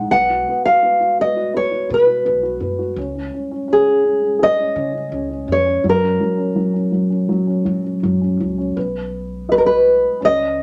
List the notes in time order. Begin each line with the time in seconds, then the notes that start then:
Already playing: G#3 D#4 F#5
0.11 B1 B3 F#5
0.30 F#4
0.49 B3
0.66 F#4 F5
0.83 B3
1.00 F#4
1.19 B3 D#5
1.36 F#4
1.54 B3 C#5
1.71 F#4
1.89 B2 B3
1.94 B4
2.07 F#4
2.25 B1 B3
2.43 F#4
2.60 F#2 B3
2.79 F#4
2.96 C#2 C#4
3.15 C#4
3.34 C#4
3.51 C#4
3.68 C#4
3.73 G#4
3.87 C#4
4.04 C#4
4.22 C#4
4.39 G#4 D#5
4.58 C#4
4.76 C#3 C#4
4.93 C#4
5.11 C#2 C#4
5.29 C#4
5.47 F2 C#4
5.52 C#5
5.66 C#4
5.84 F#2 F#3
5.89 A#4
6.02 C#4
6.20 F#3
6.37 C#4
6.55 F#3
6.74 C#4
6.92 F#3
7.10 C#4
7.29 F#3
7.47 C#4
7.65 F#3
7.84 C#4
8.03 F#2 F#3
8.21 C#4
8.40 C#2 F#3
8.58 C#4
8.76 B1 B3
9.49 F#4 B4 D#5
9.58 A#4
9.66 B4
10.21 C#2 C#4
10.25 D#5